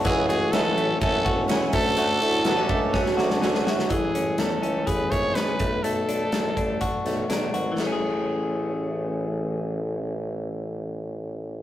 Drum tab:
CC |----------------|----------------|----------------|----------------|
RD |x-x-x-x-x-x-x-x-|x-x-x-x---------|----------------|----------------|
HH |p-------------o-|p---------------|x-x-x-x-x-x-x-x-|x-x-x-x-x-x-x-x-|
SD |----o-------o---|----o---oooooooo|----o-------o---|----o-----o-o---|
BD |o-------o-o---o-|------o-o-------|o-------o-o---o-|------o-o-------|

CC |x---------------|----------------|
RD |----------------|----------------|
HH |----------------|----------------|
SD |o---------------|----------------|
BD |----------------|----------------|